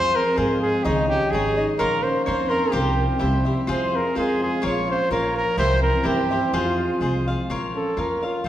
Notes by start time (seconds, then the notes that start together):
Already playing: F2 F3 G#3 A#3 C4 F4 G#4 C5 F5
0.15 C4 A#4
0.36 G#2 G#3 F4 G#4 C5 F5
0.62 F4 G#4
0.84 C#2 D#3 D#4 G#4 C#5 D#5
1.09 C#4 G4
1.31 G#1 G#3 D#4 G#4 C#5
1.35 D#5
1.57 D#4 G#4 C#5 D#5
1.78 A#1 A#3 C#4 A#4 C#5 F5 A#5 C6
2.03 C#4 C5
2.24 F2 C4 C5 C#5 F5 C6
2.28 A#5
2.49 A#4 F5 A#5 C6
2.72 C2 F3 G3 F4 G4 C5 F5
2.99 C4
3.19 C2 G3 E4 G4 C5 E5
3.45 E4 G4 C5 E5
3.67 F2 F3 G#3 F4 G#4 C5 F5
3.72 C5
3.94 C4 A#4
4.15 F2 G#3 F4 G#4 C5 F5
4.41 F4 G#4
4.62 A#1 F3 A#3 F4 A#4 C#5 F5
4.66 C#5
4.88 C#4 C5
5.10 A#1 A#3 F4 A#4 C#5 F5
5.36 F4 A#4
5.57 C2 E3 G3 E4 G4 C5 E5
5.82 C4 A#4
6.03 G2 G3 E4 G4 C5 E5
6.08 G4
6.30 E4 G4 C5 E5
6.53 F2 F3 G#3 F4 G#4 C5 F5
6.78 C4
7.00 C2 G#3 F4 G#4 C5 F5
7.26 F4 G#4 C5 F5
7.50 A#1 F3 F4 A#4 C#5 F5
7.74 C#4 A4
7.97 F2 A#3 F4 A#4 C#5 F5
8.22 F4 A#4 C#5 F5
8.44 F1 F3 F4 C5